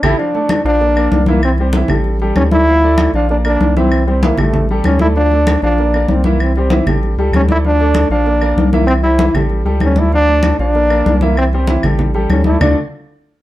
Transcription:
0.03 analog synth bass A1, trombone E4, grand piano E4 G4 A4, low conga, claves
0.18 grand piano F3 F4 F5, trombone D4, high conga
0.35 grand piano A3 A4 D5, high conga
0.49 high conga, claves
0.64 analog synth bass A#1, grand piano F3 F4 F5, trombone D4, high conga
0.81 grand piano A#3 A#4 D5, high conga
0.96 grand piano A#3 A#4 D5, high conga, claves
1.11 analog synth bass C2, high conga
1.26 grand piano E3 E4 E5, trombone A#3, high conga
1.42 trombone C4, high conga, claves
1.58 grand piano G3 G4 C5, trombone C4, high conga
1.73 grand piano E3 E4 E5, high conga
1.88 analog synth bass A1, grand piano G3 G4 A4, high conga, low conga, claves
2.04 high conga
2.20 grand piano G3 G4 A4, high conga
2.36 analog synth bass D2, trombone C#4, high conga, claves
2.51 grand piano A3 A4 D5, trombone E4, high conga
2.67 grand piano F3 F4 F5, high conga
2.82 grand piano A3 A4 D5, high conga
2.98 high conga, claves
3.13 analog synth bass A#1, grand piano F3 F4 F5, trombone D4, high conga
3.29 grand piano A#3 A#4 D5, trombone D4, high conga
3.45 grand piano A#3 A#4 D5, trombone D4, high conga, claves
3.60 analog synth bass C2, high conga
3.76 grand piano E3 E4 E5, trombone C4, high conga
3.92 high conga, claves
4.07 grand piano G3 G4 C5, trombone C4, high conga
4.23 grand piano E3 E4 E5, trombone A#3, high conga
4.37 analog synth bass A1, grand piano G3 G4 A4, trombone A3, high conga, low conga, claves
4.54 high conga, low conga
4.69 grand piano G3 G4 A4, high conga
4.84 analog synth bass D2, trombone C#4, high conga, claves
4.99 grand piano A3 A4 D5, trombone E4, high conga
5.16 grand piano F3 F4 F5, trombone D4, high conga
5.32 grand piano A3 A4 D5, high conga
5.47 high conga, claves
5.62 analog synth bass A#1, grand piano F3 F4 F5, trombone D4, high conga
5.78 grand piano A#3 A#4 D5, high conga
5.94 grand piano A#3 A#4 D5, high conga, claves
6.08 analog synth bass C2, trombone C4, high conga
6.24 grand piano E3 E4 E5, trombone A#3, high conga
6.40 trombone C4, high conga, claves
6.56 grand piano G3 G4 C5, trombone C4, high conga
6.70 grand piano E3 E4 E5, high conga
6.86 analog synth bass A1, grand piano G3 G4 A4, high conga, low conga, claves
7.03 high conga
7.17 analog synth bass C#2, grand piano G3 G4 A4, high conga
7.32 analog synth bass D2, trombone C#4, high conga, claves
7.49 grand piano A3 A4 D5, trombone E4, high conga
7.65 grand piano F3 F4 F5, trombone D4, high conga
7.80 grand piano A3 A4 D5, high conga
7.95 high conga, claves
8.10 analog synth bass A#1, grand piano F3 F4 F5, trombone D4, high conga
8.26 grand piano A#3 A#4 D5, high conga
8.42 grand piano A#3 A#4 D5, high conga, claves
8.56 analog synth bass C2, high conga
8.73 grand piano E3 E4 E5, trombone A#3, high conga
8.87 trombone C4, high conga, claves
9.03 grand piano G3 G4 C5, trombone E4, high conga
9.19 grand piano E3 E4 E5, high conga
9.34 analog synth bass A1, grand piano G3 G4 A4, high conga, low conga, claves
9.49 high conga
9.65 analog synth bass C#2, grand piano G3 G4 A4, high conga
9.80 analog synth bass D2, high conga, claves
9.85 trombone C#4
9.96 grand piano A3 A4 D5, trombone E4, high conga
10.12 grand piano F3 F4 F5, trombone D4, high conga
10.28 grand piano A3 A4 D5, high conga
10.43 high conga, claves
10.59 analog synth bass A#1, grand piano F3 F4 F5, trombone D4, high conga
10.75 grand piano A#3 A#4 D5, high conga
10.90 grand piano A#3 A#4 D5, high conga, claves
11.06 analog synth bass C2, high conga
11.21 grand piano E3 E4 E5, trombone A#3, high conga
11.37 trombone C4, high conga, claves
11.53 grand piano G3 G4 C5, trombone C4, high conga
11.67 grand piano E3 E4 E5, high conga
11.83 analog synth bass A1, grand piano G3 G4 A4, high conga, low conga, claves
11.99 high conga, low conga
12.14 grand piano G3 G4 A4, high conga
12.29 analog synth bass D2, trombone C#4, high conga, claves
12.44 grand piano A3 A4 D5, trombone E4, high conga
12.60 analog synth bass D2, grand piano D3 A3 D4 F4 A4 D5, trombone D4, low conga, claves

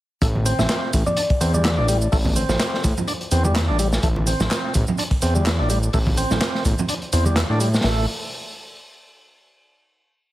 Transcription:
0.22 analog synth bass A1, tonewheel organ A3, kick, closed hi-hat, shaker
0.35 high conga
0.46 tonewheel organ C4, closed hi-hat, open hi-hat, shaker
0.59 analog synth bass A1, synth pluck E5, snare, low conga, shaker
0.69 snare, clap, closed hi-hat, shaker
0.93 analog synth bass A1, kick, closed hi-hat, open hi-hat, high conga, shaker
1.06 synth pluck D5, low conga, shaker
1.17 tonewheel organ D4, closed hi-hat, shaker
1.30 kick, open hi-hat
1.41 analog synth bass E2, tonewheel organ C4, closed hi-hat, open hi-hat, shaker
1.54 tonewheel organ G3, synth pluck D5, high conga, shaker
1.65 tonewheel organ E4, synth pluck D5, snare, clap, closed hi-hat, shaker
1.77 analog synth bass A1, tonewheel organ D4
1.88 tonewheel organ G3, closed hi-hat, open hi-hat, shaker
2.01 shaker
2.12 analog synth bass A1, tonewheel organ A3, kick, open hi-hat, shaker
2.25 kick, high conga
2.36 tonewheel organ C4, closed hi-hat, open hi-hat, shaker
2.49 analog synth bass A1, synth pluck C5, snare, low conga, shaker
2.60 synth pluck C5, snare, clap, closed hi-hat, shaker
2.74 snare
2.84 analog synth bass A1, kick, closed hi-hat, open hi-hat, high conga, shaker
2.97 low conga, shaker
3.08 tonewheel organ D4, closed hi-hat, shaker
3.21 closed hi-hat
3.31 analog synth bass E2, tonewheel organ C4, closed hi-hat, open hi-hat, shaker
3.44 tonewheel organ G3, high conga, shaker
3.55 tonewheel organ E4, snare, clap, closed hi-hat, shaker
3.68 analog synth bass A1, tonewheel organ D4
3.79 tonewheel organ G3, closed hi-hat, open hi-hat, shaker
3.93 snare, shaker
4.03 analog synth bass A1, tonewheel organ A3, kick, closed hi-hat, shaker
4.16 high conga
4.27 tonewheel organ C4, closed hi-hat, open hi-hat, shaker
4.40 analog synth bass A1, snare, low conga, shaker
4.51 snare, clap, closed hi-hat, shaker
4.74 analog synth bass A1, kick, closed hi-hat, open hi-hat, high conga, shaker
4.87 low conga, shaker
4.98 tonewheel organ D4, closed hi-hat, shaker
5.11 kick, open hi-hat
5.22 analog synth bass E2, tonewheel organ C4, closed hi-hat, open hi-hat, shaker
5.35 tonewheel organ G3, high conga, shaker
5.46 tonewheel organ E4, snare, clap, closed hi-hat, shaker
5.59 analog synth bass A1, tonewheel organ D4
5.70 tonewheel organ G3, closed hi-hat, open hi-hat, shaker
5.83 shaker
5.93 analog synth bass A1, tonewheel organ A3, kick, open hi-hat, shaker
6.07 kick, high conga
6.17 tonewheel organ C4, closed hi-hat, open hi-hat, shaker
6.31 analog synth bass A1, snare, low conga, shaker
6.41 snare, clap, closed hi-hat, shaker
6.55 snare
6.65 analog synth bass A1, kick, closed hi-hat, open hi-hat, high conga, shaker
6.78 low conga, shaker
6.88 tonewheel organ D4, closed hi-hat, shaker
7.02 closed hi-hat
7.13 analog synth bass E2, tonewheel organ C4, closed hi-hat, open hi-hat, shaker
7.25 tonewheel organ G3, high conga, shaker
7.36 tonewheel organ E4, snare, clap, closed hi-hat, shaker
7.50 analog synth bass A2, tonewheel organ D4
7.60 tonewheel organ G3, closed hi-hat, open hi-hat, shaker
7.74 snare, shaker
7.84 analog synth bass A1, tonewheel organ A3, snare, open hi-hat

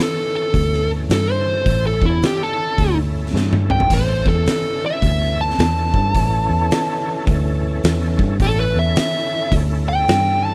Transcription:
Already playing: tonewheel organ E3 C#4 A4
0.02 lead electric guitar A4
0.36 lead electric guitar A4
0.54 fingered electric bass D2, kick, open hi-hat
0.73 snare
1.09 fingered electric bass G2, lead electric guitar A4, snare, open hi-hat
1.31 lead electric guitar C5
1.66 fingered electric bass A1, tonewheel organ C#4 E4 A4, kick, open hi-hat
1.87 lead electric guitar A4
2.02 fingered electric bass E2, lead electric guitar E4, kick
2.22 lead electric guitar G4, muted fingered electric bass stroke, snare, open hi-hat
2.43 lead electric guitar A4
2.78 fingered electric bass D2, kick, open hi-hat
3.26 snare
3.33 fingered electric bass G2, snare
3.53 high tom
3.70 lead electric guitar G5, mid tom
3.80 floor tom
3.90 fingered electric bass A1, tonewheel organ E3 C#4 A4, lead electric guitar C5, kick, open hi-hat, crash
4.25 fingered electric bass E2, lead electric guitar A4, kick
4.46 muted fingered electric bass stroke, snare, open hi-hat
4.86 lead electric guitar E5
5.02 fingered electric bass D2, kick, open hi-hat
5.21 snare
5.41 lead electric guitar A5
5.50 snare
5.59 fingered electric bass E2, lead electric guitar A5, snare, open hi-hat
5.94 fingered electric bass G2, kick
6.14 fingered electric bass A1, tonewheel organ E3 C#4 A4, kick, open hi-hat
6.49 fingered electric bass E2
6.71 muted fingered electric bass stroke, snare, open hi-hat
7.27 fingered electric bass D2, kick, open hi-hat
7.84 fingered electric bass E2, snare, open hi-hat
8.19 fingered electric bass G2, kick
8.40 fingered electric bass A1, tonewheel organ C#4 E4 A4, lead electric guitar A4, kick, open hi-hat
8.60 lead electric guitar B4
8.76 fingered electric bass E2, lead electric guitar E5
8.96 lead electric guitar E5, muted fingered electric bass stroke, snare, open hi-hat
9.52 fingered electric bass D2, kick, open hi-hat
9.88 lead electric guitar G5
10.08 fingered electric bass G2, snare, open hi-hat
10.45 lead electric guitar A5

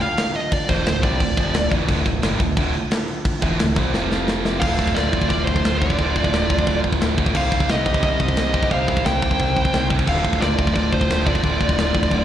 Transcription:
Already playing: pipe organ D3 A3 D4 F4
0.01 lead electric guitar F5, crash
0.17 snare, crash
0.35 lead electric guitar D#5, crash
0.52 lead electric guitar D5, kick, crash
0.69 picked electric bass E1, distorted electric guitar E2 B2 E3, lead electric guitar C5, kick, crash
0.86 picked electric bass D1, distorted electric guitar D2 A2, snare, crash
1.03 picked electric bass C2, distorted electric guitar C3 G3 C4, lead electric guitar D5, kick, crash
1.20 picked electric bass D1, distorted electric guitar D2 A2, kick, crash
1.37 picked electric bass F1, distorted electric guitar F2 C3 F3, kick, crash
1.54 picked electric bass D1, distorted electric guitar D2 A2, snare, crash
1.71 picked electric bass E1, distorted electric guitar E2 B2 E3, kick, crash
1.88 picked electric bass D1, distorted electric guitar D2 A2 D3, kick, crash
2.06 picked electric bass D1, distorted electric guitar D2 A2, kick, crash
2.23 picked electric bass G1, distorted electric guitar G2 D3 G3, snare, crash
2.40 picked electric bass D1, distorted electric guitar D2 A2, kick, crash
2.57 picked electric bass D1, distorted electric guitar D2 A2 D3, kick, crash
2.74 crash
2.91 snare, crash
3.08 crash
3.25 kick, crash
3.42 picked electric bass E1, distorted electric guitar E2 B2 E3, kick, crash
3.59 picked electric bass D1, distorted electric guitar D2 A2, snare, crash
3.76 picked electric bass C2, distorted electric guitar C3 G3 C4, kick, crash
3.93 picked electric bass F1, distorted electric guitar F2 C3 F3, pipe organ F3 C4 G4 F5, snare
4.12 snare
4.28 snare
4.45 snare
4.60 picked electric bass D1, distorted electric guitar D2 A2, pipe organ D3 A3 F4, lead electric guitar A4 F5, kick, crash, china
4.65 distorted electric guitar D3
4.79 picked electric bass D1, kick
4.87 kick
4.94 picked electric bass D1, lead electric guitar F4 D5, snare, china
5.13 picked electric bass D1, kick
5.22 kick
5.29 picked electric bass D1, lead electric guitar F4 D5, kick, china
5.44 picked electric bass D1, lead electric guitar F4 C5, kick
5.56 kick
5.64 picked electric bass D1, snare, china
5.78 distorted electric guitar D3, lead electric guitar F4 D5, kick
5.83 distorted electric guitar D2 A2
5.90 kick
5.98 picked electric bass D1, distorted electric guitar D2 A2 D3, kick, china
6.16 picked electric bass D1, kick
6.24 kick
6.32 picked electric bass D1, snare, china
6.50 picked electric bass D1, kick
6.59 kick
6.67 picked electric bass D1, kick, china
6.84 picked electric bass D1, kick
6.92 kick
7.01 picked electric bass D1, snare, china
7.17 distorted electric guitar D2 A2 D3, kick
7.26 kick
7.34 picked electric bass C2, distorted electric guitar C3 G3 C4, pipe organ C3 G3 D#4, lead electric guitar C5 F5, kick, crash, china
7.52 picked electric bass C2, kick
7.60 kick
7.69 picked electric bass C2, lead electric guitar G4 D#5, snare, china
7.86 picked electric bass C2, kick
7.94 kick
8.02 picked electric bass C2, lead electric guitar G4 D#5, kick, china
8.20 picked electric bass C2, kick
8.28 kick
8.36 picked electric bass C2, snare, china
8.53 distorted electric guitar G3 C4, kick
8.58 distorted electric guitar C3
8.63 kick
8.71 picked electric bass C2, distorted electric guitar C3 G3 C4, lead electric guitar C5 F5, kick, china
8.88 picked electric bass C2, kick
8.97 kick
9.05 picked electric bass C2, lead electric guitar C5 G5, snare, china
9.22 picked electric bass C2, kick
9.31 kick
9.40 picked electric bass C2, kick, china
9.56 picked electric bass C2, kick
9.65 kick
9.73 picked electric bass C2, snare, china
9.89 distorted electric guitar G3 C4, kick
9.94 distorted electric guitar C3
9.99 kick
10.06 picked electric bass D1, distorted electric guitar D2 A2 D3, pipe organ D3 A3 F4, lead electric guitar A4 F5, kick, china, crash
10.24 picked electric bass D1, kick
10.33 kick
10.41 picked electric bass D1, lead electric guitar F4 D5, snare, china
10.58 picked electric bass D1, kick
10.67 kick
10.74 picked electric bass D1, lead electric guitar F4 D5, kick, china
10.92 picked electric bass D1, lead electric guitar F4 C5, kick
11.01 kick
11.10 picked electric bass D1, snare, china
11.25 distorted electric guitar D2 A2 D3, lead electric guitar F4 D5, kick
11.35 kick
11.43 picked electric bass D1, distorted electric guitar D2 A2 D3, kick, china
11.60 picked electric bass D1, kick
11.69 kick
11.78 picked electric bass D1, snare, china
11.94 picked electric bass D1, kick
12.03 kick
12.11 picked electric bass D1, kick, china

